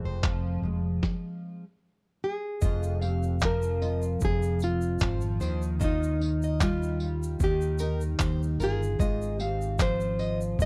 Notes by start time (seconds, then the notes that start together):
Already playing: F2 F3 C4 F4 G#4
0.04 F1 C5
0.23 F3, kick, clap
0.62 F1 G#3
1.03 kick, snare
2.24 G#4
2.62 F1 F2 F4 D#5, kick, shaker
2.83 shaker
3.02 C4 G4 F5, tambourine
3.23 shaker
3.40 F3, kick, clap, shaker
3.45 A#4
3.62 shaker
3.82 F4 D#5, tambourine
4.02 shaker
4.21 F1 F2, kick, shaker
4.25 G#4
4.43 shaker
4.60 C4, tambourine, shaker
4.64 F4
4.81 shaker
4.99 G#1 F3 C5, kick, clap, shaker
5.21 shaker
5.40 D#2 D#3 C5, tambourine, shaker
5.62 shaker
5.79 D#3 F4 D#5, kick, shaker
5.84 D#4
6.03 shaker
6.20 D#4, tambourine
6.42 D#5, shaker
6.61 G3 F4, kick, clap, shaker
6.83 shaker
7.00 F4, tambourine
7.23 shaker
7.40 D#2 D#3 G4, kick, shaker
7.61 shaker
7.79 D#4 A#4, tambourine, shaker
8.01 shaker
8.19 D#2 C5, kick, clap, shaker
8.43 shaker
8.58 G1 F4 A#4, tambourine, shaker
8.64 G#4
8.83 shaker
8.99 G#1 G#2 F4 D#5, kick, shaker
9.22 shaker
9.39 C4 G4 F5, tambourine
9.62 shaker
9.79 F3 C5, kick, clap, shaker
10.00 shaker
10.19 F4 D#5, tambourine
10.41 shaker
10.59 G#1 G#2 D#5, kick, shaker